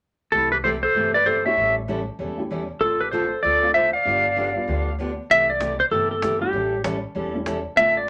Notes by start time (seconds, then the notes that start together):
0.32 C2 C3 E3 A3 E4 G4 A4
0.52 G4 B4
0.64 C3 E3 A3 E4 G4 A4 C5, cajon slap
0.83 A4 C5
0.95 G1 C3 E3 A3 E4 G4
1.14 B4 D5
1.25 C3 E3 A3 E4 G4 A4 C5, cajon slap
1.45 A3 C#4 E4 G4 C#5 E5
1.57 A1 E3 G3 C#4 E4 A4
1.88 E3 G3 C#4 E4 A4, cajon slap
2.19 E1 E3 G3 C#4 E4 A4
2.38 A3 C#4 E4 G4
2.51 E3 G3 C#4 E4 A4, cajon slap
2.81 A1 D3 A3 C4 F4 A4
3.01 G4 B4
3.12 D3 A3 C4 F4 A4 C5, cajon slap
3.43 D2 D3 A3 C4 F4 A4 D5
3.62 A3 C4 D4 F4
3.74 D3 A3 C4 F4 A4 C5 E5, cajon slap
3.93 D5 F5
4.05 G1 D3 F3 G3 B3 D4 F4 G4
4.36 D3 F3 B3 D4 G4, cajon slap
4.55 G3 B3 D4 F4
4.68 D2 D3 F3 B3 D4 G4
4.99 D3 F3 B3 D4 G4, cajon slap
5.30 C2 C3 E3 A3 E4 G4 E5
5.50 D5
5.60 C3 E3 A3 E4 G4, cajon slap
5.80 C5
5.91 G1 C3 E3 A3 E4 G4 A4
6.11 A4
6.22 C3 E3 A3 E4 G4, cajon slap
6.40 G3 A3 C#4 E4 G4
6.53 A1 E3 G3 C#4 E4 A4
6.84 E3 G3 C#4 E4 A4, cajon slap
7.15 E1 E3 G3 C#4 E4 A4
7.34 G3 A3 C#4 E4
7.46 E3 G3 C#4 E4 A4, cajon slap
7.76 A1 D3 A3 C4 D4 F4 A4 E5
7.97 D5